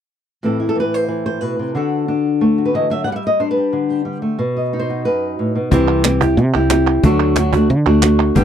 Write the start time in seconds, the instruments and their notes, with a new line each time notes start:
0.43 nylon-string guitar A2 E3 C4 E4 A4
0.60 nylon-string guitar E4
0.69 nylon-string guitar A4
0.75 nylon-string guitar E3
0.80 nylon-string guitar B4
0.94 nylon-string guitar C5
1.08 nylon-string guitar E3
1.26 nylon-string guitar C5
1.41 nylon-string guitar B2 B4
1.59 nylon-string guitar C3
1.75 nylon-string guitar D3 D4 F#4 A4
2.08 nylon-string guitar D4
2.41 nylon-string guitar A3
2.58 nylon-string guitar F#4
2.65 nylon-string guitar B4
2.74 nylon-string guitar E3 D#5
2.90 nylon-string guitar F#3 E5
3.04 nylon-string guitar G3 F#5
3.12 nylon-string guitar E5 F#5
3.27 nylon-string guitar D#5
3.40 nylon-string guitar D4 C5
3.51 nylon-string guitar B4
3.57 nylon-string guitar G4
3.73 nylon-string guitar D3
3.90 nylon-string guitar G4
4.05 nylon-string guitar G3
4.22 nylon-string guitar A3
4.39 nylon-string guitar B2
4.57 nylon-string guitar D#5
4.73 nylon-string guitar D#4
4.79 nylon-string guitar C5
4.90 nylon-string guitar F#4
5.05 nylon-string guitar F#2 B4
5.39 nylon-string guitar A2
5.55 nylon-string guitar B2
5.71 fretless electric bass C2, nylon-string guitar C3 E3 C4 E4 G4, cajon bass
6.04 nylon-string guitar E3 C4 E4 G4, cajon slap, clap
6.21 nylon-string guitar C4 E4 G4, cajon bass
6.37 fretless electric bass C3, muted nylon-string guitar stroke
6.54 fretless electric bass C2, nylon-string guitar C4 E4 G4
6.70 nylon-string guitar C4 E4 G4, cajon slap, clap
7.03 fretless electric bass D2, nylon-string guitar D3 F#3 A3 D4 F#4, cajon bass
7.36 nylon-string guitar F#3 A3 D4 F#4, cajon slap, clap
7.53 nylon-string guitar A3 D4 F#4, cajon bass
7.70 fretless electric bass D3, muted nylon-string guitar stroke, cajon slap
7.86 fretless electric bass D2, nylon-string guitar A3 D4 F#4
8.02 nylon-string guitar A3 D4 F#4, cajon slap, clap
8.35 fretless electric bass G1, nylon-string guitar D3 G3 B3 D4 G4, cajon bass